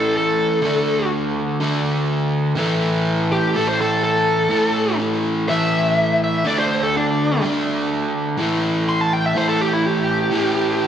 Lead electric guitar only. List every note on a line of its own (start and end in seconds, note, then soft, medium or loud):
0.00 0.15 A4 medium
0.17 1.10 A4 medium
3.32 3.55 G4 medium
3.56 3.67 A4 medium
3.68 3.80 C5 medium
3.81 4.02 A4 medium
4.04 4.98 A4 loud
5.49 6.20 E5 loud
6.24 6.46 E5 medium
6.47 6.58 D5 medium
6.59 6.82 C5 medium
6.83 6.94 A4 medium
6.97 7.42 D4 loud
8.89 9.01 C6 loud
9.01 9.12 A5 medium
9.13 9.24 G5 medium
9.26 9.36 E5 medium
9.37 9.48 C5 loud
9.49 9.60 A4 medium
9.61 9.73 G4 medium
9.73 9.86 E4 medium
9.86 10.87 G4 loud